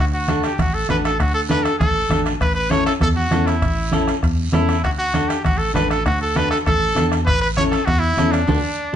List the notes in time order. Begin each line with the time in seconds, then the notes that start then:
0.00 D2
0.14 F#4
0.28 D4 F#4 A4, bombo rim, high conga, high timbale, short guiro
0.43 G4, bombo rim, high timbale, short guiro
0.58 A1 F#4, bombo low, bombo rim, high conga, high timbale, long guiro
0.74 A4
0.89 A1 D4 F#4 A4 B4, bombo rim, high conga, high timbale, short guiro
1.05 A4, bombo rim, high timbale, short guiro
1.19 D2 F#4, bombo low, bombo rim, high timbale, long guiro
1.34 A4
1.49 D4 F#4 A4 B4, bombo rim, high conga, high timbale, short guiro
1.63 A4, bombo rim, high timbale, short guiro
1.79 A1 A4, bombo low, bombo rim, high conga, high timbale, long guiro
2.09 A1 D4 F#4 A4, bombo rim, high conga, high timbale, short guiro
2.26 bombo rim, high timbale, short guiro
2.41 A1 B4, bombo low, bombo rim, high timbale, long guiro
2.55 B4
2.70 C#4 E4 A4 C#5, bombo rim, high conga, high timbale, short guiro
2.86 A4, bombo rim, high timbale, short guiro
3.01 E2 A4, bombo low, bombo rim, high conga, high timbale, long guiro
3.16 F#4
3.31 E2 C#4 E4 A4, bombo rim, high conga, high timbale, low timbale, short guiro
3.47 E4, bombo rim, high timbale, short guiro
3.62 A1, bombo low, bombo rim, high timbale, long guiro
3.91 C#4 E4 A4, bombo rim, high conga, high timbale, short guiro
4.07 bombo rim, high timbale, short guiro
4.23 E2, bombo low, bombo rim, high timbale, long guiro
4.52 E2 C#4 E4 A4, bombo rim, high conga, high timbale, low timbale, short guiro
4.69 bombo rim, high timbale, short guiro
4.84 D2 F#4, bombo low, bombo rim, high timbale, long guiro
4.99 F#4
5.14 D4 F#4 A4, bombo rim, high conga, high timbale, short guiro
5.28 G4, bombo rim, high timbale, short guiro
5.44 A1 F#4, bombo low, bombo rim, high conga, high timbale, long guiro
5.58 A4
5.74 A1 D4 F#4 A4 B4, bombo rim, high conga, high timbale, low timbale, short guiro
5.90 A4, bombo rim, high timbale, short guiro
6.06 D2 F#4, bombo low, bombo rim, high timbale, long guiro
6.22 A4
6.35 D4 F#4 A4 B4, bombo rim, high conga, high timbale, short guiro
6.51 A4, bombo rim, high timbale, short guiro
6.66 A1 A4, bombo low, bombo rim, high conga, high timbale, long guiro
6.95 E2 D4 F#4 A4, bombo rim, high conga, high timbale, short guiro
7.12 bombo rim, high timbale, short guiro
7.26 A1 B4, bombo low, bombo rim, high timbale, long guiro
7.41 B4
7.56 C#4 E4 A4 C#5, bombo rim, high conga, high timbale, short guiro
7.70 A4, bombo rim, high timbale, short guiro
7.86 E2 F#4, bombo low, bombo rim, high timbale, long guiro
8.00 E4
8.17 E2 C#4 E4 A4, bombo rim, high conga, high timbale, short guiro
8.32 D4, bombo rim, high timbale, short guiro
8.47 D2 D4 F#4 A4, bombo low, high conga, high timbale, long guiro